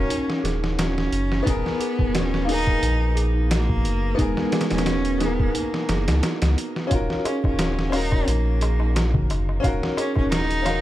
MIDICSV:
0, 0, Header, 1, 7, 480
1, 0, Start_track
1, 0, Key_signature, -6, "minor"
1, 0, Tempo, 681818
1, 1027, Time_signature, 4, 2, 24, 8
1, 7611, End_track
2, 0, Start_track
2, 0, Title_t, "Celesta"
2, 0, Program_c, 0, 8
2, 0, Control_c, 0, 64, 127
2, 0, Note_on_c, 0, 66, 79
2, 0, Note_on_c, 0, 68, 86
2, 65, Note_on_c, 0, 63, 89
2, 295, Note_off_c, 0, 63, 0
2, 304, Note_off_c, 0, 68, 0
2, 304, Note_on_c, 0, 68, 72
2, 430, Note_off_c, 0, 68, 0
2, 436, Note_on_c, 0, 63, 67
2, 499, Note_off_c, 0, 63, 0
2, 550, Note_off_c, 0, 66, 0
2, 550, Note_on_c, 0, 66, 80
2, 673, Note_off_c, 0, 66, 0
2, 1027, Note_on_c, 0, 63, 81
2, 1037, Control_c, 0, 64, 0
2, 1174, Control_c, 0, 64, 127
2, 1256, Note_off_c, 0, 63, 0
2, 1267, Note_on_c, 0, 68, 85
2, 1392, Note_off_c, 0, 68, 0
2, 1399, Note_on_c, 0, 63, 81
2, 1461, Note_off_c, 0, 63, 0
2, 1504, Note_on_c, 0, 66, 80
2, 1630, Note_off_c, 0, 66, 0
2, 1982, Note_on_c, 0, 63, 83
2, 2214, Note_off_c, 0, 63, 0
2, 2220, Note_on_c, 0, 68, 77
2, 2348, Note_off_c, 0, 68, 0
2, 2352, Note_on_c, 0, 63, 73
2, 2417, Note_off_c, 0, 63, 0
2, 2465, Note_on_c, 0, 66, 80
2, 2591, Note_off_c, 0, 66, 0
2, 2943, Note_on_c, 0, 63, 80
2, 3174, Note_off_c, 0, 63, 0
2, 3184, Note_on_c, 0, 68, 84
2, 3310, Note_off_c, 0, 68, 0
2, 3315, Note_on_c, 0, 63, 78
2, 3379, Note_off_c, 0, 63, 0
2, 3425, Note_on_c, 0, 66, 78
2, 3551, Note_off_c, 0, 66, 0
2, 3900, Note_on_c, 0, 63, 83
2, 4133, Note_off_c, 0, 63, 0
2, 4144, Note_on_c, 0, 68, 76
2, 4270, Note_off_c, 0, 68, 0
2, 4279, Note_on_c, 0, 63, 74
2, 4341, Note_off_c, 0, 63, 0
2, 4387, Note_on_c, 0, 66, 79
2, 4512, Note_off_c, 0, 66, 0
2, 4865, Note_on_c, 0, 63, 83
2, 4876, Control_c, 0, 64, 0
2, 4983, Control_c, 0, 64, 127
2, 5095, Note_off_c, 0, 63, 0
2, 5103, Note_on_c, 0, 68, 86
2, 5230, Note_off_c, 0, 68, 0
2, 5236, Note_on_c, 0, 63, 76
2, 5299, Note_off_c, 0, 63, 0
2, 5343, Note_on_c, 0, 66, 75
2, 5470, Note_off_c, 0, 66, 0
2, 5825, Note_on_c, 0, 63, 80
2, 6055, Note_off_c, 0, 63, 0
2, 6064, Note_on_c, 0, 68, 74
2, 6190, Note_off_c, 0, 68, 0
2, 6195, Note_on_c, 0, 63, 74
2, 6258, Note_off_c, 0, 63, 0
2, 6301, Note_on_c, 0, 66, 80
2, 6429, Note_off_c, 0, 66, 0
2, 6781, Note_on_c, 0, 63, 80
2, 7013, Note_off_c, 0, 63, 0
2, 7022, Note_on_c, 0, 68, 81
2, 7149, Note_off_c, 0, 68, 0
2, 7155, Note_on_c, 0, 63, 79
2, 7218, Note_off_c, 0, 63, 0
2, 7262, Note_on_c, 0, 66, 75
2, 7389, Note_off_c, 0, 66, 0
2, 7611, End_track
3, 0, Start_track
3, 0, Title_t, "Upright piano"
3, 0, Program_c, 1, 0
3, 0, Control_c, 1, 64, 127
3, 0, Note_on_c, 1, 61, 85
3, 0, Note_on_c, 1, 66, 83
3, 0, Note_on_c, 1, 70, 93
3, 0, Note_on_c, 1, 77, 86
3, 992, Note_off_c, 1, 61, 0
3, 1000, Note_off_c, 1, 77, 0
3, 1005, Note_on_c, 1, 59, 107
3, 1008, Note_off_c, 1, 66, 0
3, 1017, Note_off_c, 1, 70, 0
3, 1020, Note_on_c, 1, 63, 90
3, 1035, Control_c, 1, 64, 0
3, 1035, Note_on_c, 1, 68, 88
3, 1055, Note_on_c, 1, 70, 106
3, 1147, Control_c, 1, 64, 127
3, 1710, Note_off_c, 1, 59, 0
3, 1717, Note_off_c, 1, 63, 0
3, 1722, Note_on_c, 1, 58, 90
3, 1725, Note_off_c, 1, 68, 0
3, 1735, Note_off_c, 1, 70, 0
3, 1738, Note_on_c, 1, 63, 79
3, 1755, Note_on_c, 1, 68, 80
3, 1774, Note_on_c, 1, 70, 94
3, 2909, Note_off_c, 1, 58, 0
3, 2916, Note_off_c, 1, 63, 0
3, 2919, Note_on_c, 1, 59, 102
3, 2925, Note_off_c, 1, 68, 0
3, 2934, Note_off_c, 1, 70, 0
3, 2937, Note_on_c, 1, 63, 85
3, 2953, Note_on_c, 1, 68, 94
3, 2972, Note_on_c, 1, 70, 107
3, 3627, Note_off_c, 1, 59, 0
3, 3636, Note_off_c, 1, 63, 0
3, 3644, Note_off_c, 1, 68, 0
3, 3644, Note_on_c, 1, 47, 91
3, 3653, Note_off_c, 1, 70, 0
3, 3660, Note_on_c, 1, 63, 80
3, 3678, Note_on_c, 1, 68, 78
3, 3696, Note_on_c, 1, 70, 101
3, 4829, Note_off_c, 1, 47, 0
3, 4837, Note_on_c, 1, 61, 100
3, 4838, Note_off_c, 1, 63, 0
3, 4847, Note_off_c, 1, 68, 0
3, 4855, Note_off_c, 1, 70, 0
3, 4855, Note_on_c, 1, 65, 86
3, 4869, Note_on_c, 1, 66, 84
3, 4874, Control_c, 1, 64, 0
3, 4888, Note_on_c, 1, 70, 109
3, 5006, Control_c, 1, 64, 127
3, 5546, Note_off_c, 1, 61, 0
3, 5555, Note_off_c, 1, 65, 0
3, 5560, Note_on_c, 1, 61, 87
3, 5562, Note_off_c, 1, 66, 0
3, 5571, Note_off_c, 1, 70, 0
3, 5576, Note_on_c, 1, 77, 76
3, 5593, Note_on_c, 1, 66, 82
3, 5610, Note_on_c, 1, 70, 94
3, 6747, Note_off_c, 1, 61, 0
3, 6756, Note_off_c, 1, 77, 0
3, 6758, Note_on_c, 1, 61, 104
3, 6764, Note_off_c, 1, 66, 0
3, 6772, Note_off_c, 1, 70, 0
3, 6777, Note_on_c, 1, 77, 89
3, 6793, Note_on_c, 1, 66, 97
3, 6811, Note_on_c, 1, 70, 107
3, 7466, Note_off_c, 1, 61, 0
3, 7476, Note_off_c, 1, 77, 0
3, 7476, Note_on_c, 1, 61, 86
3, 7484, Note_off_c, 1, 66, 0
3, 7493, Note_off_c, 1, 70, 0
3, 7495, Note_on_c, 1, 77, 86
3, 7512, Note_on_c, 1, 66, 83
3, 7530, Note_on_c, 1, 70, 97
3, 7611, Note_off_c, 1, 61, 0
3, 7611, Note_off_c, 1, 66, 0
3, 7611, Note_off_c, 1, 70, 0
3, 7611, Note_off_c, 1, 77, 0
3, 7611, End_track
4, 0, Start_track
4, 0, Title_t, "Cello"
4, 0, Program_c, 2, 42
4, 0, Note_on_c, 2, 61, 111
4, 313, Note_off_c, 2, 61, 0
4, 558, Note_on_c, 2, 61, 98
4, 1050, Note_on_c, 2, 59, 103
4, 1061, Note_off_c, 2, 61, 0
4, 1528, Note_on_c, 2, 61, 102
4, 1539, Note_off_c, 2, 59, 0
4, 1757, Note_off_c, 2, 61, 0
4, 1770, Note_on_c, 2, 63, 119
4, 2210, Note_off_c, 2, 63, 0
4, 2502, Note_on_c, 2, 58, 107
4, 2977, Note_on_c, 2, 56, 102
4, 2988, Note_off_c, 2, 58, 0
4, 3337, Note_on_c, 2, 61, 113
4, 3348, Note_off_c, 2, 56, 0
4, 3680, Note_on_c, 2, 59, 99
4, 3690, Note_off_c, 2, 61, 0
4, 3929, Note_on_c, 2, 58, 94
4, 3939, Note_off_c, 2, 59, 0
4, 4638, Note_off_c, 2, 58, 0
4, 5112, Note_on_c, 2, 61, 96
4, 5232, Note_off_c, 2, 61, 0
4, 5246, Note_on_c, 2, 61, 100
4, 5601, Note_on_c, 2, 63, 105
4, 5612, Note_off_c, 2, 61, 0
4, 5841, Note_on_c, 2, 58, 91
4, 5851, Note_off_c, 2, 63, 0
4, 6554, Note_off_c, 2, 58, 0
4, 7038, Note_on_c, 2, 61, 110
4, 7155, Note_off_c, 2, 61, 0
4, 7162, Note_on_c, 2, 61, 99
4, 7259, Note_off_c, 2, 61, 0
4, 7264, Note_on_c, 2, 63, 117
4, 7611, Note_off_c, 2, 63, 0
4, 7611, End_track
5, 0, Start_track
5, 0, Title_t, "Analog synth bass"
5, 0, Program_c, 3, 38
5, 309, Note_on_c, 3, 27, 85
5, 767, Note_off_c, 3, 27, 0
5, 791, Note_on_c, 3, 30, 81
5, 1003, Note_off_c, 3, 30, 0
5, 1033, Note_on_c, 3, 27, 95
5, 1146, Note_off_c, 3, 27, 0
5, 1403, Note_on_c, 3, 27, 89
5, 1969, Note_off_c, 3, 27, 0
5, 1988, Note_on_c, 3, 34, 78
5, 2705, Note_on_c, 3, 30, 84
5, 2716, Note_off_c, 3, 34, 0
5, 2920, Note_off_c, 3, 30, 0
5, 2951, Note_on_c, 3, 27, 90
5, 3064, Note_off_c, 3, 27, 0
5, 3321, Note_on_c, 3, 27, 89
5, 3887, Note_off_c, 3, 27, 0
5, 4147, Note_on_c, 3, 30, 92
5, 4279, Note_on_c, 3, 37, 89
5, 4289, Note_off_c, 3, 30, 0
5, 4374, Note_off_c, 3, 37, 0
5, 4522, Note_on_c, 3, 37, 84
5, 4615, Note_off_c, 3, 37, 0
5, 4868, Note_on_c, 3, 27, 91
5, 4983, Note_off_c, 3, 27, 0
5, 5237, Note_on_c, 3, 27, 89
5, 5806, Note_off_c, 3, 27, 0
5, 5827, Note_on_c, 3, 34, 81
5, 6544, Note_on_c, 3, 30, 91
5, 6554, Note_off_c, 3, 34, 0
5, 6759, Note_off_c, 3, 30, 0
5, 6788, Note_on_c, 3, 27, 87
5, 6903, Note_off_c, 3, 27, 0
5, 7157, Note_on_c, 3, 27, 90
5, 7611, Note_off_c, 3, 27, 0
5, 7611, End_track
6, 0, Start_track
6, 0, Title_t, "Darbuka"
6, 4868, Note_on_c, 9, 63, 41
6, 4939, Note_off_c, 9, 63, 0
6, 5107, Note_on_c, 9, 63, 80
6, 5177, Note_off_c, 9, 63, 0
6, 5244, Note_on_c, 9, 63, 53
6, 5314, Note_off_c, 9, 63, 0
6, 5350, Note_on_c, 9, 63, 40
6, 5420, Note_off_c, 9, 63, 0
6, 5578, Note_on_c, 9, 63, 86
6, 5648, Note_off_c, 9, 63, 0
6, 5716, Note_on_c, 9, 63, 52
6, 5787, Note_off_c, 9, 63, 0
6, 5834, Note_on_c, 9, 63, 42
6, 5905, Note_off_c, 9, 63, 0
6, 6072, Note_on_c, 9, 63, 84
6, 6142, Note_off_c, 9, 63, 0
6, 6194, Note_on_c, 9, 63, 56
6, 6264, Note_off_c, 9, 63, 0
6, 6306, Note_on_c, 9, 63, 37
6, 6376, Note_off_c, 9, 63, 0
6, 6433, Note_on_c, 9, 64, 87
6, 6504, Note_off_c, 9, 64, 0
6, 6552, Note_on_c, 9, 63, 87
6, 6623, Note_off_c, 9, 63, 0
6, 6681, Note_on_c, 9, 63, 55
6, 6751, Note_off_c, 9, 63, 0
6, 6783, Note_on_c, 9, 63, 39
6, 6853, Note_off_c, 9, 63, 0
6, 7021, Note_on_c, 9, 63, 85
6, 7092, Note_off_c, 9, 63, 0
6, 7149, Note_on_c, 9, 63, 53
6, 7220, Note_off_c, 9, 63, 0
6, 7260, Note_on_c, 9, 63, 42
6, 7331, Note_off_c, 9, 63, 0
6, 7503, Note_on_c, 9, 63, 84
6, 7573, Note_off_c, 9, 63, 0
6, 7611, End_track
7, 0, Start_track
7, 0, Title_t, "Drums"
7, 73, Note_on_c, 9, 42, 91
7, 143, Note_off_c, 9, 42, 0
7, 209, Note_on_c, 9, 38, 45
7, 279, Note_off_c, 9, 38, 0
7, 316, Note_on_c, 9, 42, 70
7, 319, Note_on_c, 9, 38, 48
7, 386, Note_off_c, 9, 42, 0
7, 389, Note_off_c, 9, 38, 0
7, 449, Note_on_c, 9, 38, 44
7, 519, Note_off_c, 9, 38, 0
7, 554, Note_on_c, 9, 42, 92
7, 557, Note_on_c, 9, 38, 116
7, 625, Note_off_c, 9, 42, 0
7, 627, Note_off_c, 9, 38, 0
7, 689, Note_on_c, 9, 38, 43
7, 760, Note_off_c, 9, 38, 0
7, 792, Note_on_c, 9, 42, 69
7, 862, Note_off_c, 9, 42, 0
7, 927, Note_on_c, 9, 38, 45
7, 998, Note_off_c, 9, 38, 0
7, 1032, Note_on_c, 9, 36, 106
7, 1036, Note_on_c, 9, 42, 94
7, 1103, Note_off_c, 9, 36, 0
7, 1106, Note_off_c, 9, 42, 0
7, 1169, Note_on_c, 9, 38, 40
7, 1240, Note_off_c, 9, 38, 0
7, 1271, Note_on_c, 9, 42, 75
7, 1342, Note_off_c, 9, 42, 0
7, 1401, Note_on_c, 9, 36, 92
7, 1472, Note_off_c, 9, 36, 0
7, 1511, Note_on_c, 9, 42, 89
7, 1514, Note_on_c, 9, 38, 113
7, 1582, Note_off_c, 9, 42, 0
7, 1585, Note_off_c, 9, 38, 0
7, 1648, Note_on_c, 9, 38, 44
7, 1718, Note_off_c, 9, 38, 0
7, 1752, Note_on_c, 9, 46, 74
7, 1823, Note_off_c, 9, 46, 0
7, 1881, Note_on_c, 9, 36, 97
7, 1952, Note_off_c, 9, 36, 0
7, 1991, Note_on_c, 9, 42, 89
7, 2061, Note_off_c, 9, 42, 0
7, 2231, Note_on_c, 9, 42, 62
7, 2302, Note_off_c, 9, 42, 0
7, 2470, Note_on_c, 9, 42, 86
7, 2473, Note_on_c, 9, 38, 121
7, 2541, Note_off_c, 9, 42, 0
7, 2544, Note_off_c, 9, 38, 0
7, 2600, Note_on_c, 9, 36, 92
7, 2671, Note_off_c, 9, 36, 0
7, 2710, Note_on_c, 9, 42, 68
7, 2781, Note_off_c, 9, 42, 0
7, 2948, Note_on_c, 9, 36, 109
7, 2949, Note_on_c, 9, 42, 88
7, 3018, Note_off_c, 9, 36, 0
7, 3020, Note_off_c, 9, 42, 0
7, 3078, Note_on_c, 9, 38, 54
7, 3149, Note_off_c, 9, 38, 0
7, 3184, Note_on_c, 9, 42, 70
7, 3186, Note_on_c, 9, 38, 98
7, 3244, Note_off_c, 9, 42, 0
7, 3244, Note_on_c, 9, 42, 70
7, 3246, Note_off_c, 9, 38, 0
7, 3246, Note_on_c, 9, 38, 93
7, 3312, Note_off_c, 9, 42, 0
7, 3312, Note_on_c, 9, 42, 67
7, 3315, Note_off_c, 9, 38, 0
7, 3315, Note_on_c, 9, 38, 91
7, 3366, Note_off_c, 9, 42, 0
7, 3366, Note_on_c, 9, 42, 68
7, 3369, Note_off_c, 9, 38, 0
7, 3369, Note_on_c, 9, 38, 91
7, 3422, Note_off_c, 9, 42, 0
7, 3422, Note_on_c, 9, 42, 89
7, 3424, Note_off_c, 9, 38, 0
7, 3424, Note_on_c, 9, 38, 112
7, 3492, Note_off_c, 9, 42, 0
7, 3495, Note_off_c, 9, 38, 0
7, 3554, Note_on_c, 9, 42, 47
7, 3624, Note_off_c, 9, 42, 0
7, 3664, Note_on_c, 9, 42, 71
7, 3667, Note_on_c, 9, 38, 44
7, 3735, Note_off_c, 9, 42, 0
7, 3737, Note_off_c, 9, 38, 0
7, 3799, Note_on_c, 9, 36, 95
7, 3869, Note_off_c, 9, 36, 0
7, 3906, Note_on_c, 9, 42, 91
7, 3976, Note_off_c, 9, 42, 0
7, 4040, Note_on_c, 9, 38, 47
7, 4111, Note_off_c, 9, 38, 0
7, 4145, Note_on_c, 9, 42, 72
7, 4148, Note_on_c, 9, 38, 98
7, 4215, Note_off_c, 9, 42, 0
7, 4218, Note_off_c, 9, 38, 0
7, 4279, Note_on_c, 9, 42, 82
7, 4282, Note_on_c, 9, 38, 105
7, 4349, Note_off_c, 9, 42, 0
7, 4352, Note_off_c, 9, 38, 0
7, 4385, Note_on_c, 9, 42, 77
7, 4388, Note_on_c, 9, 38, 101
7, 4456, Note_off_c, 9, 42, 0
7, 4459, Note_off_c, 9, 38, 0
7, 4518, Note_on_c, 9, 42, 77
7, 4521, Note_on_c, 9, 38, 106
7, 4588, Note_off_c, 9, 42, 0
7, 4591, Note_off_c, 9, 38, 0
7, 4632, Note_on_c, 9, 42, 72
7, 4703, Note_off_c, 9, 42, 0
7, 4761, Note_on_c, 9, 38, 44
7, 4832, Note_off_c, 9, 38, 0
7, 4864, Note_on_c, 9, 42, 87
7, 4867, Note_on_c, 9, 36, 108
7, 4934, Note_off_c, 9, 42, 0
7, 4937, Note_off_c, 9, 36, 0
7, 4999, Note_on_c, 9, 38, 39
7, 5070, Note_off_c, 9, 38, 0
7, 5107, Note_on_c, 9, 42, 69
7, 5177, Note_off_c, 9, 42, 0
7, 5238, Note_on_c, 9, 36, 91
7, 5308, Note_off_c, 9, 36, 0
7, 5342, Note_on_c, 9, 42, 94
7, 5344, Note_on_c, 9, 38, 124
7, 5412, Note_off_c, 9, 42, 0
7, 5415, Note_off_c, 9, 38, 0
7, 5482, Note_on_c, 9, 38, 46
7, 5552, Note_off_c, 9, 38, 0
7, 5583, Note_on_c, 9, 46, 77
7, 5654, Note_off_c, 9, 46, 0
7, 5717, Note_on_c, 9, 36, 94
7, 5788, Note_off_c, 9, 36, 0
7, 5827, Note_on_c, 9, 42, 94
7, 5897, Note_off_c, 9, 42, 0
7, 6063, Note_on_c, 9, 42, 62
7, 6134, Note_off_c, 9, 42, 0
7, 6308, Note_on_c, 9, 42, 82
7, 6311, Note_on_c, 9, 38, 114
7, 6379, Note_off_c, 9, 42, 0
7, 6382, Note_off_c, 9, 38, 0
7, 6439, Note_on_c, 9, 36, 96
7, 6509, Note_off_c, 9, 36, 0
7, 6547, Note_on_c, 9, 42, 67
7, 6618, Note_off_c, 9, 42, 0
7, 6786, Note_on_c, 9, 36, 110
7, 6789, Note_on_c, 9, 42, 84
7, 6857, Note_off_c, 9, 36, 0
7, 6859, Note_off_c, 9, 42, 0
7, 6923, Note_on_c, 9, 38, 54
7, 6993, Note_off_c, 9, 38, 0
7, 7027, Note_on_c, 9, 42, 70
7, 7097, Note_off_c, 9, 42, 0
7, 7156, Note_on_c, 9, 36, 94
7, 7226, Note_off_c, 9, 36, 0
7, 7264, Note_on_c, 9, 42, 90
7, 7267, Note_on_c, 9, 38, 115
7, 7335, Note_off_c, 9, 42, 0
7, 7338, Note_off_c, 9, 38, 0
7, 7396, Note_on_c, 9, 42, 44
7, 7466, Note_off_c, 9, 42, 0
7, 7503, Note_on_c, 9, 42, 71
7, 7506, Note_on_c, 9, 38, 42
7, 7573, Note_off_c, 9, 42, 0
7, 7576, Note_off_c, 9, 38, 0
7, 7611, End_track
0, 0, End_of_file